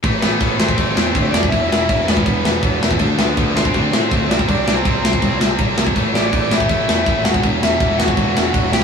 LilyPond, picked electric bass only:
\new Staff \with { instrumentName = "Picked electric bass" } { \clef bass \time 4/4 \key a \dorian \tempo 4 = 162 a,,8 a,,8 a,,8 a,,8 a,,8 e,8 d,8 e,,8 | e,,8 e,,8 e,,8 e,,8 e,,8 e,,8 e,,8 e,8 | d,8 d,8 d,8 d,8 d,8 a,8 d,8 c,8 | c,8 c,8 c,8 c,8 c,8 c,8 c,8 c,8 |
a,,8 a,,8 a,,8 a,,8 a,,8 e,8 a,,8 e,,8 | e,,8 e,,8 e,,8 e,,8 e,,8 e,,8 e,,8 cis,8 | }